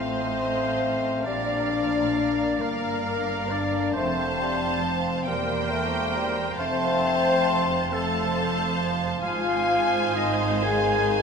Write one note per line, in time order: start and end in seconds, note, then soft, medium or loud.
0.00 1.26 A1 soft
0.00 1.25 A2 medium
0.00 1.22 A3 medium
0.00 1.26 C4 medium
0.00 1.25 C5 medium
0.00 1.26 C5 medium
0.00 1.25 D#5 soft
0.00 1.23 F5 medium
1.24 2.58 A#1 medium
1.24 2.57 A#2 medium
1.24 1.70 G3 medium
1.24 2.60 D4 medium
1.24 2.58 A#4 medium
1.24 2.57 D5 medium
1.24 2.63 D5 medium
1.24 2.65 D5 medium
1.24 2.58 F5 medium
1.72 2.19 F3 medium
2.17 3.95 A#3 medium
2.58 3.96 G1 medium
2.58 3.95 G2 medium
2.58 3.48 A#3 medium
2.58 3.92 A#4 medium
2.58 3.50 A#4 medium
2.58 3.52 A#4 medium
2.58 3.92 D5 medium
2.58 3.92 F5 medium
2.63 3.54 A#4 medium
3.49 3.95 D4 medium
3.49 3.93 D5 medium
3.49 3.95 D5 medium
3.93 5.25 F1 medium
3.93 5.25 F2 medium
3.93 4.39 A3 medium
3.93 5.27 C4 medium
3.93 4.97 C5 medium
3.93 4.98 C5 medium
3.93 4.99 C5 medium
3.93 5.26 C5 medium
3.93 5.25 F5 medium
3.93 5.25 A5 medium
4.41 4.83 G3 medium
4.84 5.30 F3 medium
5.26 6.59 E1 medium
5.26 6.59 E2 medium
5.26 5.71 G3 medium
5.26 6.43 A#3 medium
5.26 6.61 A#4 medium
5.26 6.55 A#4 medium
5.26 6.61 A#4 medium
5.26 6.56 C5 medium
5.26 6.58 G5 medium
5.26 6.56 G5 medium
5.70 6.16 A3 medium
6.15 6.46 G3 medium
6.58 9.19 F1 medium
6.58 9.19 F2 medium
6.58 7.64 A3 medium
6.58 7.91 C4 loud
6.58 7.95 C5 medium
6.58 7.91 C5 medium
6.58 7.92 C5 medium
6.58 7.94 C5 medium
6.58 7.92 F5 medium
6.58 7.90 A5 medium
7.93 10.64 F3 medium
7.93 8.80 A3 medium
7.93 8.78 A4 medium
7.93 8.80 A4 medium
7.93 9.21 C5 medium
7.93 9.20 F5 medium
7.93 9.20 A5 medium
9.22 11.22 G#1 medium
9.22 11.22 G#2 medium
9.22 10.11 F4 loud
9.22 11.22 C5 medium
9.22 11.22 F5 medium
9.22 10.11 F5 medium
9.22 10.16 F5 medium
9.22 10.18 F5 medium
9.22 10.59 G#5 medium
10.14 10.63 D#4 medium
10.14 10.63 D#5 medium
10.14 10.66 D#5 medium
10.14 10.63 D#5 medium
10.62 11.22 D#3 medium
10.62 11.22 G#4 loud
10.62 11.22 G#5 medium